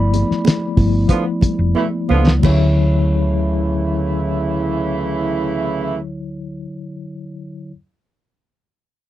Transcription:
Already playing: fingered electric bass G1, tine electric piano F3 A3 B3 E4 D5 B5
0.14 closed hi-hat, muted conga
0.31 muted fingered electric bass stroke, snare
0.45 snare, closed hi-hat, high conga
0.76 fingered electric bass G1, tine electric piano F3 A3 B3 E4, kick, open hi-hat, muted conga
1.09 horn section D3 F3 B3 F4, kick, closed hi-hat
1.41 muted fingered electric bass stroke, kick, closed hi-hat, muted conga, low conga
1.59 fingered electric bass F1
1.75 horn section B2 E3 A3 E4, high conga
2.09 fingered electric bass C#2, horn section D3 F3 B3 F4, high conga
2.27 snare
2.39 fingered electric bass D2, horn section C#3 E3 A3 E4, tine electric piano D3 F#3 E4, muted conga
2.44 tine electric piano C#5, kick, crash

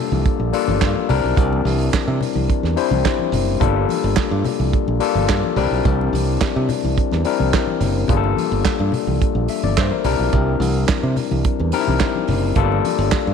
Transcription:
Already playing: tine electric piano G3 A#3 D4 F4 A4
0.12 fingered electric bass C2, high conga
0.26 kick, closed hi-hat, muted conga
0.40 fingered electric bass A#1
0.53 tine electric piano G3 A#3 D4 F4 A4, open hi-hat
0.68 fingered electric bass G1, high conga
0.82 fingered electric bass G2, kick, snare, clap, closed hi-hat
0.95 high conga
1.09 fingered electric bass C2, tine electric piano G3 C4 D4 E4 A#4, open hi-hat, low conga
1.24 fingered electric bass B1
1.37 fingered electric bass C2, kick, closed hi-hat, low conga
1.53 muted conga
1.65 fingered electric bass C2, open hi-hat, high conga
1.93 kick, snare, clap, closed hi-hat, muted conga
2.08 fingered electric bass C3, muted conga
2.21 open hi-hat, low conga
2.35 fingered electric bass C2, high conga
2.49 kick, closed hi-hat, muted conga
2.63 fingered electric bass E2, snare
2.76 tine electric piano G3 C4 D4 E4 C5, open hi-hat
2.91 fingered electric bass C2, high conga
3.05 kick, snare, clap, closed hi-hat
3.19 muted conga, high conga
3.32 fingered electric bass F#1, open hi-hat, low conga
3.60 fingered electric bass G1, tine electric piano G3 A#3 D4 F4 A4, kick, closed hi-hat, muted conga, low conga
3.89 open hi-hat, high conga
4.04 fingered electric bass G1
4.16 kick, snare, clap, closed hi-hat, muted conga
4.31 fingered electric bass G2, muted conga
4.45 open hi-hat, low conga
4.60 fingered electric bass C2, high conga
4.73 kick, closed hi-hat, muted conga
4.88 fingered electric bass A#1, muted conga
5.00 tine electric piano G3 A#3 D4 F4 A4, open hi-hat
5.15 fingered electric bass G1, high conga
5.29 fingered electric bass G2, kick, snare, clap, closed hi-hat
5.44 muted conga, high conga
5.56 fingered electric bass C2, tine electric piano G3 C4 D4 E4 A#4, open hi-hat, low conga
5.71 fingered electric bass B1
5.85 fingered electric bass C2, kick, closed hi-hat, muted conga, low conga
6.01 muted conga
6.13 fingered electric bass C2, open hi-hat, high conga
6.41 kick, snare, clap, closed hi-hat, muted conga
6.56 fingered electric bass C3, muted conga
6.69 open hi-hat, low conga
6.84 fingered electric bass C2, high conga
6.97 kick, closed hi-hat, muted conga
7.11 fingered electric bass E2, snare, muted conga
7.25 tine electric piano G3 C4 D4 E4 A#4, open hi-hat
7.40 fingered electric bass C2, high conga
7.53 kick, snare, clap, closed hi-hat, muted conga
7.67 muted conga, high conga
7.80 fingered electric bass F#1, open hi-hat, low conga
8.08 fingered electric bass G1, tine electric piano G3 A#3 D4 F4 G#4, kick, closed hi-hat, muted conga, low conga
8.17 tine electric piano A4
8.24 muted conga
8.37 open hi-hat, high conga
8.52 fingered electric bass G1
8.65 kick, snare, clap, closed hi-hat, muted conga
8.79 fingered electric bass G2, muted conga
8.92 open hi-hat, low conga
9.07 fingered electric bass C2, high conga
9.21 kick, closed hi-hat, muted conga
9.35 fingered electric bass A#1
9.48 tine electric piano E5, open hi-hat
9.63 fingered electric bass G1, tine electric piano D5, high conga
9.77 fingered electric bass G2, tine electric piano C5, kick, snare, clap
9.91 tine electric piano A#4, muted conga, high conga
10.04 fingered electric bass C2, tine electric piano G3 C4 D4 E4 A#4, open hi-hat, low conga
10.19 fingered electric bass B1
10.33 fingered electric bass C2, kick, closed hi-hat, low conga
10.60 fingered electric bass C2, open hi-hat, high conga
10.88 kick, snare, clap, closed hi-hat, muted conga
11.03 fingered electric bass C3, muted conga
11.16 open hi-hat, low conga
11.31 fingered electric bass C2, high conga
11.45 kick, closed hi-hat, muted conga
11.60 fingered electric bass E2, muted conga
11.72 tine electric piano G3 C4 D4 D#4 A#4, open hi-hat
11.80 tine electric piano E4
11.88 fingered electric bass C2, high conga
12.00 kick, snare, clap, closed hi-hat
12.15 high conga
12.28 fingered electric bass F#1, open hi-hat, low conga
12.56 fingered electric bass G1, tine electric piano G3 A#3 D4 F4 A4, kick, closed hi-hat, low conga
12.72 muted conga
12.85 open hi-hat, high conga
12.99 fingered electric bass G1
13.12 kick, snare, clap, closed hi-hat
13.27 fingered electric bass G2, muted conga

